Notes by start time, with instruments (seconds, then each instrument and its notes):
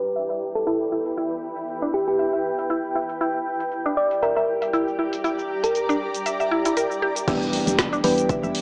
Already playing: ambient pad E4 B4 D5 G5, synth pluck B4
0.04 closed hi-hat, shaker
0.16 synth arpeggio sound E5, closed hi-hat, shaker
0.30 synth arpeggio sound E5, shaker
0.55 synth pluck A4, synth arpeggio sound E5, closed hi-hat, shaker
0.67 synth arpeggio sound E4, synth pluck A4, closed hi-hat, shaker
0.81 shaker
0.92 synth arpeggio sound E4
1.06 closed hi-hat, shaker
1.17 synth arpeggio sound E4, closed hi-hat, shaker
1.32 shaker
1.57 closed hi-hat, shaker
1.68 closed hi-hat, shaker
1.82 synth arpeggio sound D4, shaker
1.94 synth pluck G4
2.08 synth pluck G4, closed hi-hat, shaker
2.19 synth arpeggio sound E5, closed hi-hat, shaker
2.33 synth arpeggio sound E5, shaker
2.59 synth arpeggio sound E5, closed hi-hat, shaker
2.70 synth arpeggio sound E4, closed hi-hat, shaker
2.85 shaker
2.95 synth arpeggio sound E4, ambient pad G4
3.09 closed hi-hat, shaker
3.21 synth arpeggio sound E4, closed hi-hat, shaker
3.35 shaker
3.60 closed hi-hat, shaker
3.72 closed hi-hat, shaker
3.76 ambient pad D5
3.86 synth arpeggio sound D4, shaker
3.97 synth pluck D5
4.11 closed hi-hat, shaker
4.22 synth pluck A#4, synth arpeggio sound E5, closed hi-hat, shaker
4.36 synth pluck A#4, synth arpeggio sound E5, shaker
4.51 ambient pad A#5
4.62 synth arpeggio sound E5, closed hi-hat, shaker
4.73 synth arpeggio sound E4, closed hi-hat, shaker
4.88 shaker
4.99 synth arpeggio sound E4
5.13 closed hi-hat, shaker
5.24 synth arpeggio sound E4, closed hi-hat, shaker
5.39 shaker
5.64 synth pluck A#4, closed hi-hat, shaker
5.75 closed hi-hat, shaker
5.89 synth arpeggio sound D4, shaker
6.14 closed hi-hat, shaker
6.26 synth arpeggio sound E5, closed hi-hat, shaker
6.40 synth arpeggio sound E5, shaker
6.51 synth arpeggio sound E4
6.65 synth arpeggio sound E4, closed hi-hat, shaker
6.77 synth arpeggio sound A#4, closed hi-hat, shaker
6.91 shaker
7.02 synth arpeggio sound G4
7.16 closed hi-hat, shaker
7.27 fm bass E1, synth stab E3 G3 B3 D4 G4, ambient pad E4, synth arpeggio sound E4, kick, closed hi-hat, crash, impact, shaker
7.42 shaker
7.53 open hi-hat
7.67 fm bass E1, closed hi-hat, shaker
7.72 ambient pad B4
7.79 kick, snare, closed hi-hat, shaker
7.93 synth arpeggio sound D4, shaker
8.04 fm bass E1, synth stab E3 G3 B3 D4 G4, synth pluck B4, open hi-hat
8.18 closed hi-hat, shaker
8.29 synth arpeggio sound E5, ambient pad G5, kick, closed hi-hat, shaker
8.43 fm bass E1, synth arpeggio sound E5, shaker
8.55 open hi-hat